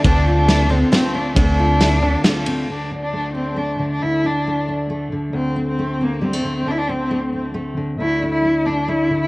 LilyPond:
<<
  \new Staff \with { instrumentName = "Five-string banjo" } { \time 3/4 \key d \minor \tempo 4 = 136 d'4 e'8 d'8 f'4 | d'4 e'8 d'8 f'4 | r2. | r2. |
r2. | r2. | r2. | }
  \new Staff \with { instrumentName = "Cello" } { \time 3/4 \key d \minor d'8. d'8. c'8 c'8 d'8 | d'2~ d'8 r8 | d'8. d'8. c'8 d'8. d'16 | e'8 d'4 r4. |
c'8. c'8. bes8 c'8. c'16 | d'32 e'32 d'16 c'4 r4. | e'8. e'8. d'8 e'8. e'16 | }
  \new Staff \with { instrumentName = "Twelve-string acoustic guitar" } { \time 3/4 \key d \minor <d a c' f' a'>4 <a c' f' a'>8 <c' f' a'>8 <a c' f' a'>4 | <d a c' f' a'>4 <a c' f' a'>4 <a c' f' a'>4 | r2. | r2. |
r2. | r2. | r2. | }
  \new Staff \with { instrumentName = "Steel-string acoustic guitar" } { \time 3/4 \key d \minor << { c'8 f'4. a8 c'8 | c'8 f'4. a8 c'8 | r8 d'8 a8 d'8 a4 | r8 d'8 a8 d'8 a4 |
r8 c'8 a8 c'8 g16 a8. | r8 c'8 a8 c'8 a4 | <d a d'>8 d'8 a8 d'8 a4 | } \\ { <d, d>4. d4. | d,4. d4. | d,2~ d,8 d8 | d,2~ d,8 d8 |
d,2~ d,8 d8 | d,2~ d,8 d8 | d,2~ d,8 d8 | } >> }
  \new Staff \with { instrumentName = "Fretless electric bass" } { \clef bass \time 3/4 \key d \minor d,2 r4 | d,2 r4 | r2. | r2. |
r2. | r2. | r2. | }
  \new DrumStaff \with { instrumentName = "Drums" } \drummode { \time 3/4 <bd cymr>4 <cymr sn>4 <cymr sn>4 | <bd cymr>4 <cymr sn>4 <cymr sn>8 cymr8 | r4 r4 r4 | r4 r4 r4 |
r4 r4 r4 | r4 r4 r4 | r4 r4 r4 | }
>>